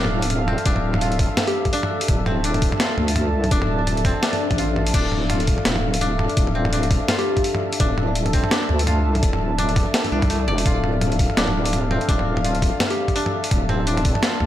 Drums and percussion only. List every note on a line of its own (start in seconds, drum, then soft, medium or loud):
0.05 mid tom medium
0.22 open hi-hat medium
0.30 closed hi-hat medium
0.30 mid tom soft
0.48 mid tom medium
0.58 closed hi-hat soft
0.66 kick loud
0.66 closed hi-hat medium
0.76 mid tom medium
0.94 mid tom medium
1.01 closed hi-hat medium
1.12 closed hi-hat soft
1.19 kick loud
1.19 mid tom medium
1.19 open hi-hat medium
1.37 snare loud
1.37 closed hi-hat medium
1.37 mid tom medium
1.47 open hi-hat soft
1.65 kick medium
1.65 closed hi-hat soft
1.65 mid tom medium
1.73 open hi-hat medium
1.83 mid tom medium
2.01 open hi-hat medium
2.08 kick loud
2.08 closed hi-hat medium
2.08 mid tom medium
2.26 mid tom medium
2.44 closed hi-hat medium
2.54 closed hi-hat soft
2.54 mid tom medium
2.62 kick loud
2.62 open hi-hat medium
2.72 mid tom medium
2.80 snare loud
2.80 closed hi-hat medium
2.98 mid tom medium
3.08 open hi-hat medium
3.16 closed hi-hat medium
3.16 mid tom medium
3.44 closed hi-hat soft
3.44 mid tom medium
3.51 kick loud
3.51 closed hi-hat medium
3.62 mid tom medium
3.87 closed hi-hat medium
3.87 mid tom medium
3.97 closed hi-hat soft
4.05 kick loud
4.05 mid tom medium
4.05 open hi-hat medium
4.23 snare loud
4.23 closed hi-hat medium
4.33 mid tom medium
4.33 open hi-hat soft
4.51 kick medium
4.51 closed hi-hat soft
4.51 mid tom medium
4.58 open hi-hat medium
4.76 mid tom medium
4.87 open hi-hat medium
4.94 kick loud
4.94 closed hi-hat medium
4.94 crash medium
5.12 mid tom medium
5.30 closed hi-hat medium
5.30 mid tom medium
5.40 closed hi-hat soft
5.47 kick loud
5.47 open hi-hat medium
5.58 mid tom medium
5.65 snare loud
5.65 closed hi-hat medium
5.76 mid tom medium
5.94 open hi-hat medium
6.01 closed hi-hat medium
6.01 mid tom medium
6.19 mid tom medium
6.30 closed hi-hat soft
6.37 kick loud
6.37 closed hi-hat medium
6.47 mid tom medium
6.65 mid tom medium
6.73 closed hi-hat medium
6.83 closed hi-hat soft
6.91 kick loud
6.91 mid tom medium
6.91 open hi-hat medium
7.08 snare loud
7.08 closed hi-hat medium
7.08 mid tom medium
7.19 open hi-hat soft
7.37 kick medium
7.37 closed hi-hat soft
7.37 mid tom medium
7.44 open hi-hat medium
7.55 mid tom medium
7.73 open hi-hat medium
7.80 kick loud
7.80 closed hi-hat medium
7.80 mid tom medium
7.98 mid tom medium
8.15 closed hi-hat medium
8.26 closed hi-hat soft
8.26 mid tom medium
8.33 kick loud
8.33 open hi-hat medium
8.44 mid tom medium
8.51 snare loud
8.51 closed hi-hat medium
8.69 mid tom medium
8.79 open hi-hat medium
8.87 closed hi-hat medium
8.87 mid tom medium
9.15 closed hi-hat soft
9.15 mid tom medium
9.23 kick loud
9.23 closed hi-hat medium
9.33 mid tom medium
9.59 closed hi-hat medium
9.59 mid tom soft
9.69 closed hi-hat soft
9.76 kick loud
9.76 mid tom medium
9.76 open hi-hat medium
9.94 snare loud
9.94 closed hi-hat medium
10.05 mid tom soft
10.05 open hi-hat soft
10.22 kick medium
10.22 closed hi-hat soft
10.22 mid tom medium
10.30 open hi-hat medium
10.48 mid tom soft
10.58 open hi-hat medium
10.66 kick loud
10.66 closed hi-hat medium
10.84 mid tom medium
11.01 closed hi-hat medium
11.01 mid tom medium
11.12 closed hi-hat soft
11.19 kick loud
11.19 open hi-hat medium
11.30 mid tom soft
11.37 snare loud
11.37 closed hi-hat medium
11.48 mid tom medium
11.66 open hi-hat medium
11.73 closed hi-hat medium
11.73 mid tom medium
11.91 mid tom medium
12.01 closed hi-hat soft
12.09 kick loud
12.09 closed hi-hat medium
12.19 mid tom medium
12.37 mid tom medium
12.45 closed hi-hat medium
12.55 closed hi-hat soft
12.62 kick loud
12.62 mid tom medium
12.62 open hi-hat medium
12.80 snare loud
12.80 closed hi-hat medium
12.80 mid tom medium
12.90 open hi-hat soft
13.08 kick medium
13.08 closed hi-hat soft
13.08 mid tom medium
13.16 open hi-hat medium
13.26 mid tom medium
13.44 open hi-hat medium
13.51 kick loud
13.51 closed hi-hat medium
13.51 mid tom medium
13.69 mid tom medium
13.87 closed hi-hat medium
13.97 closed hi-hat soft
13.97 mid tom medium
14.05 kick loud
14.05 open hi-hat medium
14.15 mid tom medium
14.23 snare loud
14.23 closed hi-hat medium
14.40 mid tom medium